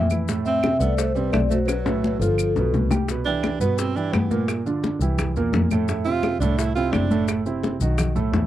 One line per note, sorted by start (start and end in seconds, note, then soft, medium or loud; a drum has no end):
0.00 0.75 F2 medium
0.10 0.25 E3 medium
0.10 0.26 E4 medium
0.10 high bongo soft
0.10 high conga medium
0.10 claves medium
0.10 maracas medium
0.28 0.58 A2 medium
0.28 0.58 A3 medium
0.28 high bongo medium
0.28 high conga soft
0.28 maracas medium
0.45 0.79 C4 medium
0.45 0.78 E5 loud
0.45 high conga soft
0.45 maracas soft
0.63 0.78 C3 medium
0.63 0.78 C4 medium
0.63 high bongo medium
0.63 high conga medium
0.63 claves medium
0.63 maracas soft
0.80 1.29 C2 medium
0.80 1.10 A3 medium
0.80 0.97 B3 medium
0.80 1.10 A4 medium
0.80 0.99 D5 medium
0.80 high conga soft
0.80 maracas medium
0.97 1.14 A3 medium
0.97 1.14 C5 medium
0.97 high bongo medium
0.97 high conga soft
0.97 maracas medium
1.15 1.45 C3 medium
1.15 1.32 G3 medium
1.15 1.45 C4 medium
1.15 1.32 B4 medium
1.15 high conga soft
1.15 maracas soft
1.32 2.15 B1 medium
1.32 1.41 A3 medium
1.32 1.40 D5 medium
1.32 high bongo medium
1.32 low bongo medium
1.32 high conga medium
1.32 claves medium
1.32 maracas soft
1.50 1.80 F#3 medium
1.50 1.58 A3 medium
1.50 1.80 F#4 medium
1.50 1.58 C5 medium
1.50 high conga medium
1.50 maracas medium
1.66 2.16 F#3 medium
1.66 2.21 B4 medium
1.66 high bongo medium
1.66 high conga soft
1.66 claves medium
1.66 maracas medium
1.85 2.14 A2 medium
1.85 2.15 A3 medium
1.85 high bongo loud
1.85 high conga soft
1.85 maracas soft
2.04 high conga medium
2.04 maracas soft
2.20 2.53 G1 medium
2.20 2.69 F3 medium
2.20 2.50 F3 medium
2.20 2.50 F4 medium
2.20 2.69 A4 medium
2.20 high conga soft
2.20 maracas medium
2.38 high conga soft
2.38 claves medium
2.38 maracas medium
2.56 2.72 B1 medium
2.56 2.85 B2 medium
2.56 2.85 B3 medium
2.56 low bongo medium
2.56 high conga soft
2.56 maracas soft
2.73 3.55 C2 medium
2.73 low bongo medium
2.73 high conga medium
2.73 maracas soft
2.91 3.05 G3 medium
2.91 3.05 G4 medium
2.91 low bongo medium
2.91 high conga medium
2.91 claves medium
2.91 maracas medium
3.08 3.23 B2 medium
3.08 3.23 B3 medium
3.08 3.24 B4 medium
3.08 high bongo medium
3.08 high conga soft
3.08 maracas medium
3.25 3.55 E3 medium
3.25 3.58 D4 medium
3.25 3.55 E4 medium
3.25 3.55 G4 medium
3.25 high conga soft
3.25 maracas soft
3.43 high bongo medium
3.43 high conga medium
3.43 claves medium
3.43 maracas soft
3.60 4.09 G2 medium
3.60 3.89 B2 medium
3.60 3.80 B3 medium
3.60 3.90 B3 medium
3.60 3.90 B4 medium
3.60 high conga soft
3.60 maracas medium
3.78 3.98 C4 medium
3.78 high bongo medium
3.78 high conga soft
3.78 maracas medium
3.96 4.24 E3 medium
3.96 4.14 D4 medium
3.96 4.25 E4 medium
3.96 4.25 G4 medium
3.96 high conga soft
3.96 maracas soft
4.12 4.95 G2 medium
4.12 4.48 B3 medium
4.12 high bongo medium
4.12 low bongo medium
4.12 high conga medium
4.12 claves medium
4.12 maracas soft
4.31 4.59 A#2 medium
4.31 4.59 A#3 medium
4.31 4.60 A#4 medium
4.31 high conga medium
4.31 maracas medium
4.48 high bongo medium
4.48 high conga soft
4.48 claves medium
4.48 maracas medium
4.66 4.94 D3 medium
4.66 4.95 D4 medium
4.66 4.95 F4 medium
4.66 high bongo soft
4.66 high conga soft
4.66 maracas soft
4.84 high bongo medium
4.84 high conga medium
4.84 maracas soft
5.00 5.33 C2 medium
5.00 5.30 E3 medium
5.00 5.30 E4 medium
5.00 5.30 G4 medium
5.00 high conga soft
5.00 maracas medium
5.18 high bongo medium
5.18 high conga soft
5.18 low conga medium
5.18 claves medium
5.18 maracas medium
5.35 5.52 E2 medium
5.35 5.65 A#2 medium
5.35 5.65 A#3 medium
5.35 5.65 A#4 medium
5.35 high bongo soft
5.35 high conga soft
5.35 maracas soft
5.52 6.35 F2 medium
5.52 high bongo medium
5.52 low bongo medium
5.52 high conga medium
5.52 maracas soft
5.71 5.86 A2 medium
5.71 5.86 A3 medium
5.71 5.86 A4 medium
5.71 high bongo soft
5.71 high conga medium
5.71 claves medium
5.71 maracas medium
5.88 6.03 A2 medium
5.88 6.03 A3 medium
5.88 6.03 A4 medium
5.88 high bongo medium
5.88 high conga soft
5.88 maracas medium
6.05 6.35 C3 medium
6.05 6.35 C4 medium
6.05 6.38 F4 loud
6.05 6.35 E5 medium
6.05 high conga soft
6.05 maracas soft
6.23 high bongo medium
6.23 high conga medium
6.23 claves medium
6.23 maracas soft
6.40 6.89 C2 medium
6.40 6.70 A2 medium
6.40 6.70 A3 medium
6.40 6.59 D4 medium
6.40 6.70 A4 medium
6.40 high conga soft
6.40 maracas medium
6.58 6.75 E4 medium
6.58 high bongo medium
6.58 high conga soft
6.58 maracas medium
6.75 7.05 C3 medium
6.75 7.05 C4 medium
6.75 7.05 E4 medium
6.75 6.94 F4 loud
6.75 high conga soft
6.75 maracas soft
6.92 7.75 F#1 medium
6.92 7.28 D4 medium
6.92 high bongo medium
6.92 low bongo medium
6.92 high conga medium
6.92 claves medium
6.92 maracas soft
7.10 7.39 A2 medium
7.10 7.40 A3 medium
7.10 7.40 A4 medium
7.10 high conga medium
7.10 maracas medium
7.28 high bongo medium
7.28 claves medium
7.28 maracas medium
7.46 7.74 C3 medium
7.46 7.75 C4 medium
7.46 7.75 E4 medium
7.46 high bongo soft
7.46 high conga soft
7.46 maracas soft
7.63 high bongo medium
7.63 high conga medium
7.63 maracas soft
7.80 8.29 B1 medium
7.80 8.10 D#3 medium
7.80 8.10 D#4 medium
7.80 8.10 F#4 medium
7.80 high conga soft
7.80 maracas medium
7.98 high bongo medium
7.98 high conga soft
7.98 low conga medium
7.98 claves medium
7.98 maracas medium
8.15 8.44 A2 medium
8.15 8.44 A3 medium
8.15 8.45 A4 medium
8.15 high bongo soft
8.15 high conga soft
8.15 low conga medium
8.15 maracas soft
8.32 8.47 E2 medium
8.32 high bongo medium
8.32 low bongo medium
8.32 high conga medium
8.32 maracas soft